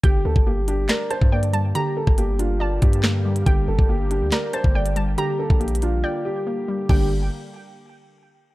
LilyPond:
<<
  \new Staff \with { instrumentName = "Synth pluck" } { \time 4/4 \key g \minor \tempo 4 = 140 g''2 bes''8 a''8 g''8 a''8 | bes''2 a''2 | g''2 bes''8 a''8 g''8 a''8 | bes''2 g''4 r4 |
g''8 r2. r8 | }
  \new Staff \with { instrumentName = "Grand piano" } { \time 4/4 \key g \minor g'8 a'8 g'8 g'8 bes'8 c''8 d''8 r8 | g'8 a'8 g'8 f'4 g'4. | g'8 a'8 g'8 g'8 bes'8 c''8 d''8 r8 | g'8 a'8 g'8 f'4 g'4. |
g'8 r2. r8 | }
  \new Staff \with { instrumentName = "Synth pluck" } { \time 4/4 \key g \minor d4 bes8 d'8 d''4 bes8 g8 | d4 bes8 d'8 d''4 bes8 g8 | d4 bes8 d'8 d''4 bes8 g8 | d4 bes8 d'8 d''4 bes8 g8 |
<d g bes d'>8 r2. r8 | }
  \new Staff \with { instrumentName = "Analog synth pad" } { \clef bass \time 4/4 \key g \minor <d g bes g'>1~ | <d g bes g'>1~ | <d g bes g'>1~ | <d g bes g'>1 |
<d g bes g'>8 r2. r8 | }
  \new Staff \with { instrumentName = "808-style bass" } { \clef bass \time 4/4 \key g \minor g,,8 d,16 g,,4~ g,,16 r8. g,4~ g,16 | r8. g,,4.~ g,,16 g,4. | g,,8 g,,16 g,,4 d,16 r8. g,,4~ g,,16 | r8. bes,,4~ bes,,16 r2 |
g,,4 r2. | }
  \new DrumStaff \with { instrumentName = "Drums" } \drummode { \time 4/4 <hh bd>8. bd16 r8 hh8 <hc hh sn>8 <hh ss>16 bd16 r16 hh16 hh8 | hh8. <bd ss>16 hh8 hh8 r8 <hh bd>16 hh16 <hc sn>8. hh16 | <hh bd>8. bd16 r8 hh8 <hc hh sn>8 <hh ss>16 bd16 r16 hh16 hh8 | hh8. bd16 \tuplet 3/2 { hh16 hh16 hh16 hh16 r16 r16 } r4 r4 |
<cymc bd>4 r4 r4 r4 | }
>>